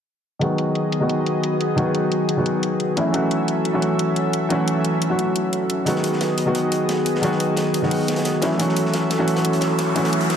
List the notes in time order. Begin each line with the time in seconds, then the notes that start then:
0.39 D#3 F#3 G#3 B3 F#4 G#4 D#5, closed hi-hat
0.58 closed hi-hat
0.75 closed hi-hat
0.92 closed hi-hat
1.00 D#3 F#3 G#3 B3 F#4
1.09 closed hi-hat
1.26 closed hi-hat
1.43 closed hi-hat
1.61 closed hi-hat
1.76 D#3 F#3 G#3 B3 F#4, closed hi-hat
1.95 closed hi-hat
2.12 closed hi-hat
2.29 closed hi-hat
2.37 D#3 F#3 G#3 B3 F#4
2.46 closed hi-hat
2.63 closed hi-hat
2.80 closed hi-hat
2.96 E3 F#3 A3 C#4 E4 A4 E5, closed hi-hat
3.12 E3 F#3 A3 C#4 F#4, closed hi-hat
3.31 closed hi-hat
3.48 closed hi-hat
3.65 closed hi-hat
3.73 E3 F#3 A3 C#4 F#4
3.82 closed hi-hat
3.99 closed hi-hat
4.16 closed hi-hat
4.33 closed hi-hat
4.49 E3 F#3 A3 C#4 F#4, closed hi-hat
4.68 closed hi-hat
4.85 closed hi-hat
5.02 closed hi-hat
5.09 E3 F#3 A3 C#4 F#4
5.19 closed hi-hat
5.36 closed hi-hat
5.53 closed hi-hat
5.70 closed hi-hat
5.85 D#3 F#3 G#3 B3 F#4 G#4 D#5, closed hi-hat
5.96 snare
6.04 closed hi-hat
6.13 snare
6.21 snare, closed hi-hat
6.38 closed hi-hat
6.46 D#3 F#3 G#3 B3 F#4
6.55 closed hi-hat
6.72 closed hi-hat
6.89 snare, closed hi-hat
7.06 closed hi-hat
7.15 snare
7.21 D#3 F#3 G#3 B3 F#4, closed hi-hat
7.31 snare
7.40 closed hi-hat
7.57 snare, closed hi-hat
7.74 closed hi-hat
7.82 D#3 F#3 G#3 B3 F#4, snare
7.91 closed hi-hat, open hi-hat
8.08 snare, closed hi-hat
8.16 snare, closed hi-hat
8.25 snare, closed hi-hat
8.41 E3 F#3 A3 C#4 E4 A4 E5, snare, closed hi-hat
8.51 snare
8.58 E3 F#3 A3 C#4 F#4, closed hi-hat, riser
8.69 snare
8.76 closed hi-hat
8.86 snare
8.94 snare, closed hi-hat
9.10 snare, closed hi-hat
9.18 E3 F#3 A3 C#4 F#4
9.28 closed hi-hat
9.36 snare, closed hi-hat
9.45 closed hi-hat
9.53 closed hi-hat
9.61 snare, closed hi-hat
9.79 snare, closed hi-hat
9.94 E3 F#3 A3 C#4 F#4, closed hi-hat
10.04 snare, closed hi-hat
10.13 closed hi-hat
10.21 closed hi-hat
10.30 snare, closed hi-hat